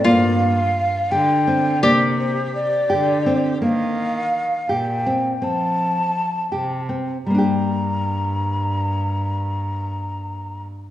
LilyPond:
<<
  \new Staff \with { instrumentName = "Flute" } { \time 5/8 \key g \minor \tempo 4 = 83 f''4. g''4 | d''8 c''8 d''4 r8 | f''4. g''4 | a''2 r8 |
bes''2~ bes''8~ | bes''2~ bes''8 | }
  \new Staff \with { instrumentName = "Resonator guitar played with a steel bar" } { \time 5/8 \key g \minor f'2~ f'8 | g'2~ g'8 | r2 r8 | r2 r8 |
r2 r8 | r2 r8 | }
  \new Staff \with { instrumentName = "Nylon-string guitar" } { \time 5/8 \key g \minor bes4 r8 g'8 c'8 | bes4 r8 g'8 c'8 | bes4 r8 g'8 c'8 | c'4 r8 g'8 c'8 |
<g bes d' g'>2~ <g bes d' g'>8~ | <g bes d' g'>2~ <g bes d' g'>8 | }
  \new Staff \with { instrumentName = "Cello" } { \clef bass \time 5/8 \key g \minor g,4. d4 | c4. d4 | ees4. bes,4 | f4. c4 |
g,2~ g,8~ | g,2~ g,8 | }
>>